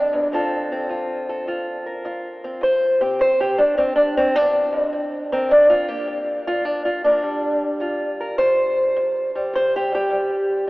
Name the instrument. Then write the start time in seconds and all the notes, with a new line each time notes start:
steel-string acoustic guitar
Already playing: F2 D3 D4
0.13 E2
0.32 D2 C4 F4 A4
0.72 C4
0.89 D2 F4
1.29 A4
1.47 D2 F4
1.86 A#4
2.05 D2 F4
2.44 C4
2.61 D2 C5
3.01 C4 G4
3.19 D2 C5
3.40 G4
3.58 D4
3.77 D2 C4
3.96 D4
4.17 C4
4.35 E2 D4
4.73 F2
4.93 G2
5.32 C4 A#4
5.49 G2 D4
5.70 F4
5.88 A#3 G4
6.07 G2
6.47 F4
6.65 G2 D4
6.85 F4
7.04 A#3 D4
7.22 G2 G3
7.80 G2 F4
8.20 A#4
8.38 G2 C5
8.96 G2
9.35 G3
9.53 G2 C5
9.76 G4
9.92 G3 G4
10.10 G2 G3